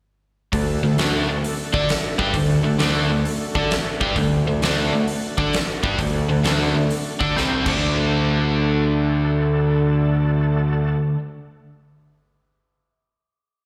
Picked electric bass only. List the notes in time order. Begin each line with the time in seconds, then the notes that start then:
0.53 D2
0.84 D2
0.99 D2
1.29 D2
1.74 D3
2.18 G2
2.34 D2
2.64 D2
2.79 D2
3.10 D2
3.55 D3
4.01 G2
4.16 D2
4.47 D2
4.62 D2
4.92 D2
5.38 D3
5.83 G2
5.99 D2
6.30 D2
6.45 D2
6.75 D2
7.20 D3
7.36 C2
7.66 D2